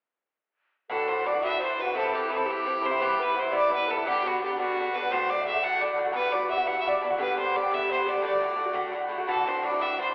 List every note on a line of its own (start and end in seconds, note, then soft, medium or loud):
0.90 1.07 A2 medium
0.90 1.08 E3 medium
0.90 1.09 D4 medium
0.90 1.09 F#4 medium
0.90 1.27 A4 medium
0.90 1.09 A4 medium
1.08 1.23 A2 soft
1.08 1.24 E3 medium
1.08 1.25 D4 medium
1.08 1.26 F#4 medium
1.08 1.28 C5 medium
1.24 1.33 A2 medium
1.24 1.34 E3 medium
1.24 1.33 D4 soft
1.24 1.32 F#4 medium
1.24 1.44 D5 medium
1.24 1.43 D5 medium
1.34 1.42 E3 soft
1.34 1.43 D4 soft
1.34 1.42 F#4 soft
1.43 1.60 A2 medium
1.43 1.61 E3 medium
1.43 1.62 D4 medium
1.43 1.62 F#4 medium
1.43 1.61 E5 medium
1.43 1.60 E5 medium
1.59 1.77 A2 soft
1.59 1.78 E3 soft
1.59 1.77 C5 medium
1.59 1.82 C5 medium
1.64 1.79 D4 soft
1.64 1.79 F#4 medium
1.78 1.87 A2 medium
1.78 1.87 E3 soft
1.78 1.85 F#4 medium
1.78 1.96 B4 medium
1.86 1.94 E3 soft
1.86 1.94 D4 soft
1.86 1.95 F#4 soft
1.94 2.11 G2 medium
1.94 2.12 E3 medium
1.94 2.12 C4 medium
1.94 2.14 E4 medium
1.94 2.30 A4 medium
1.98 2.17 A4 medium
2.12 2.27 G2 soft
2.12 2.28 E3 medium
2.12 2.29 C4 medium
2.12 2.29 E4 medium
2.12 2.33 G4 medium
2.28 2.38 G2 soft
2.28 2.38 E3 medium
2.28 2.36 C4 medium
2.28 2.35 E4 medium
2.28 2.48 A4 medium
2.28 2.52 A4 medium
2.36 2.44 E3 soft
2.36 2.46 C4 soft
2.36 2.46 E4 soft
2.45 2.63 G2 medium
2.45 2.65 E3 medium
2.45 2.66 C4 medium
2.45 2.66 E4 medium
2.45 2.84 G4 medium
2.50 2.87 G4 medium
2.65 2.81 G2 medium
2.65 2.83 E3 medium
2.65 2.83 C4 medium
2.65 2.84 E4 medium
2.82 2.91 G2 medium
2.82 2.92 E3 medium
2.82 2.92 C4 medium
2.82 2.90 E4 medium
2.82 2.99 C5 medium
2.82 3.03 C5 medium
2.91 2.99 E3 soft
2.91 3.00 C4 soft
2.91 3.00 E4 medium
2.99 3.16 G2 medium
2.99 3.17 E3 medium
2.99 3.18 B3 medium
2.99 3.19 E4 medium
2.99 3.21 G4 medium
2.99 3.23 G4 medium
3.17 3.32 G2 soft
3.17 3.33 E3 medium
3.17 3.34 B3 medium
3.17 3.34 E4 medium
3.17 3.38 B4 medium
3.22 3.40 B4 medium
3.33 3.43 G2 medium
3.33 3.43 E3 medium
3.33 3.42 B3 medium
3.33 3.41 E4 medium
3.33 3.53 C5 medium
3.39 3.51 E4 soft
3.39 3.54 C5 medium
3.44 3.51 E3 soft
3.44 3.50 B3 soft
3.51 3.69 G2 medium
3.51 3.70 E3 medium
3.51 3.70 B3 medium
3.51 3.71 E4 medium
3.51 3.73 D5 medium
3.56 3.72 D5 loud
3.70 3.86 G2 soft
3.70 3.87 E3 soft
3.70 3.88 B3 medium
3.70 3.89 E4 medium
3.70 3.89 B4 medium
3.75 3.92 B4 medium
3.88 3.96 G2 medium
3.88 3.96 E3 medium
3.88 3.97 B3 medium
3.88 3.96 E4 medium
3.88 4.04 A4 medium
3.88 4.06 A4 medium
3.97 4.06 E3 soft
3.97 4.05 B3 soft
3.97 4.05 E4 soft
4.04 4.23 G2 medium
4.04 4.24 D3 medium
4.04 4.24 B3 medium
4.04 4.24 D4 medium
4.04 4.24 G4 medium
4.08 4.29 G4 medium
4.23 4.39 G2 medium
4.23 4.41 D3 medium
4.23 4.42 B3 medium
4.23 4.42 D4 medium
4.23 4.43 F#4 medium
4.27 4.42 F#4 medium
4.41 4.49 G2 soft
4.41 4.49 D3 soft
4.41 4.50 B3 medium
4.41 4.49 D4 medium
4.41 4.57 G4 medium
4.41 4.58 G4 medium
4.50 4.58 D3 soft
4.50 4.58 B3 soft
4.50 4.58 D4 soft
4.56 4.76 G2 medium
4.56 4.77 D3 medium
4.56 4.76 B3 medium
4.56 4.77 D4 medium
4.56 4.91 F#4 medium
4.60 4.96 F#4 medium
4.77 4.93 G2 soft
4.77 4.94 D3 soft
4.77 4.95 B3 soft
4.77 4.95 D4 medium
4.92 5.02 G2 soft
4.92 5.02 D3 medium
4.92 5.12 B4 medium
4.92 5.13 B4 medium
4.96 5.03 B3 medium
4.96 5.01 D4 medium
5.02 5.10 D3 soft
5.02 5.11 B3 soft
5.02 5.10 D4 soft
5.10 5.28 A2 medium
5.10 5.29 D3 medium
5.10 5.29 A3 medium
5.10 5.30 F#4 medium
5.10 5.31 C5 medium
5.10 5.32 C5 medium
5.29 5.45 A2 soft
5.29 5.46 D3 soft
5.29 5.47 A3 soft
5.29 5.47 F#4 medium
5.29 5.43 D5 medium
5.29 5.46 D5 medium
5.42 5.54 A2 soft
5.42 5.58 E5 medium
5.42 5.47 F#5 soft
5.47 5.55 D3 medium
5.47 5.54 A3 medium
5.47 5.53 F#4 medium
5.47 5.65 E5 medium
5.54 5.62 D3 soft
5.54 5.63 A3 soft
5.54 5.62 F#4 soft
5.61 5.79 A2 medium
5.61 5.80 D3 medium
5.61 5.81 A3 medium
5.61 5.82 F#4 medium
5.61 5.81 F#5 medium
5.61 5.83 F#5 loud
5.61 5.65 G5 medium
5.80 5.94 A2 soft
5.80 5.96 D3 soft
5.80 5.97 A3 soft
5.80 5.98 F#4 soft
5.80 5.98 D5 medium
5.80 5.97 D5 medium
5.96 6.05 A2 medium
5.96 6.06 D3 medium
5.96 6.05 A3 medium
5.96 6.03 F#4 medium
6.04 6.13 D3 soft
6.04 6.14 A3 soft
6.04 6.13 F#4 soft
6.12 6.30 G2 medium
6.12 6.31 E3 medium
6.12 6.32 B3 medium
6.12 6.33 F#4 medium
6.12 6.34 B4 loud
6.12 6.35 B4 medium
6.31 6.46 G2 soft
6.31 6.48 E3 medium
6.31 6.48 B3 medium
6.31 6.49 F#4 medium
6.31 6.49 D5 medium
6.31 6.51 D5 medium
6.47 6.57 G2 soft
6.47 6.58 E3 medium
6.47 6.56 B3 medium
6.47 6.55 F#4 medium
6.47 6.69 E5 medium
6.56 6.65 E3 soft
6.56 6.66 B3 soft
6.56 6.66 F#4 medium
6.66 6.83 G2 medium
6.66 6.84 E3 medium
6.66 6.85 B3 medium
6.66 6.86 F#4 medium
6.66 6.80 F#5 loud
6.66 6.89 F#5 medium
6.80 7.00 G2 medium
6.80 6.89 E5 medium
6.86 7.01 E3 medium
6.86 7.02 B3 medium
6.86 7.03 F#4 medium
6.86 7.03 D5 medium
6.86 7.04 D5 medium
7.01 7.10 G2 medium
7.01 7.11 E3 soft
7.01 7.11 B3 medium
7.01 7.09 F#4 medium
7.10 7.18 E3 soft
7.10 7.18 B3 soft
7.10 7.19 F#4 soft
7.18 7.35 G2 medium
7.18 7.36 D3 medium
7.18 7.37 B3 medium
7.18 7.38 G4 medium
7.18 7.38 B4 medium
7.36 7.52 G2 medium
7.36 7.54 D3 medium
7.36 7.55 B3 medium
7.36 7.55 G4 medium
7.36 7.58 C5 medium
7.53 7.62 G2 medium
7.53 7.63 D3 soft
7.53 7.63 B3 medium
7.53 7.61 G4 medium
7.53 7.75 D5 medium
7.62 7.70 D3 soft
7.62 7.70 B3 soft
7.62 7.71 G4 soft
7.71 7.87 G2 medium
7.71 7.88 D3 medium
7.71 7.89 B3 medium
7.71 7.89 G4 medium
7.71 7.92 E5 medium
7.71 7.91 E5 loud
7.88 8.03 G2 medium
7.88 8.04 D3 medium
7.88 8.05 B3 medium
7.88 8.06 G4 soft
7.88 8.07 C5 medium
7.88 8.10 C5 medium
8.04 8.14 G2 medium
8.04 8.14 D3 medium
8.04 8.14 B3 medium
8.04 8.12 G4 medium
8.04 8.23 D5 medium
8.09 8.24 D5 medium
8.13 8.21 D3 soft
8.13 8.22 B3 soft
8.13 8.23 G4 soft
8.21 8.39 A2 medium
8.21 8.39 D3 medium
8.21 8.40 A3 medium
8.21 8.42 F#4 medium
8.21 8.91 D5 medium
8.40 8.55 A2 soft
8.40 8.57 D3 medium
8.40 8.57 A3 medium
8.40 8.58 F#4 medium
8.56 8.66 A2 medium
8.56 8.67 D3 soft
8.56 8.66 A3 medium
8.56 8.64 F#4 medium
8.65 8.73 D3 soft
8.65 8.74 A3 soft
8.65 8.75 F#4 soft
8.73 8.90 A2 medium
8.73 8.92 D3 medium
8.73 8.93 A3 medium
8.73 8.94 F#4 medium
8.92 9.07 A2 medium
8.92 9.08 D3 soft
8.92 9.09 A3 medium
8.92 9.10 F#4 medium
9.08 9.18 A2 medium
9.08 9.19 D3 medium
9.08 9.19 A3 medium
9.08 9.17 F#4 medium
9.18 9.28 D3 soft
9.18 9.28 A3 soft
9.18 9.27 F#4 medium
9.27 9.44 A2 medium
9.27 9.45 E3 medium
9.27 9.47 D4 medium
9.27 9.47 F#4 medium
9.27 9.49 A4 medium
9.45 9.61 A2 medium
9.45 9.62 E3 medium
9.45 9.62 D4 medium
9.45 9.64 F#4 medium
9.45 9.64 C5 medium
9.62 9.72 A2 medium
9.62 9.72 E3 medium
9.62 9.72 D4 medium
9.62 9.70 F#4 medium
9.62 9.83 D5 medium
9.71 9.80 E3 soft
9.71 9.80 D4 medium
9.71 9.80 F#4 medium
9.80 9.97 A2 medium
9.80 9.98 E3 medium
9.80 9.98 D4 medium
9.80 9.99 F#4 medium
9.80 10.00 E5 medium
9.98 10.14 A2 medium
9.98 10.14 E3 soft
9.98 10.14 D4 medium
9.98 10.14 F#4 soft
9.98 10.14 C5 medium